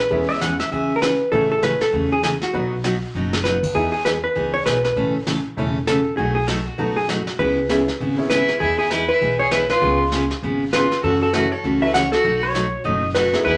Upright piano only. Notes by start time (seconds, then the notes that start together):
0.10 G#3 B3 C#4 E4
1.32 A3 C#4 E4 G#4
2.53 B3 D#4 F#4 B4
3.75 B3 D#4 E4 G#4
5.57 A3 C#4 E4 A4
6.78 B3 D#4 F#4 A4
7.69 B3 C#4 E4 G#4
8.17 B3 C#4 E4 G#4
9.81 B3 C#4 F4 G#4
11.33 C#4 E4 F#4 A4
11.81 C#4 E4 F#4 A4
13.33 B3 D#4 E4 G#4